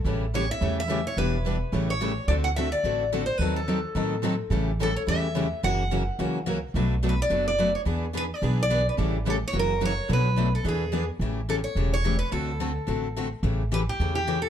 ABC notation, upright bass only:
X:1
M:4/4
L:1/8
Q:"Swing" 1/4=215
K:Amix
V:1 name="Upright bass" clef=bass
A,,,4 E,,4 | E,,,4 A,,,4 | D,,4 A,,,4 | ^D,,4 A,,4 |
A,,,4 E,,4 | F,,,4 C,,4 | B,,,4 F,,,4 | E,,4 B,,,4 |
A,,,4 F,,,4 | B,,,4 E,,4 | A,,,4 E,,,4 | D,,4 A,,,4 |
A,,,4 E,,4 |]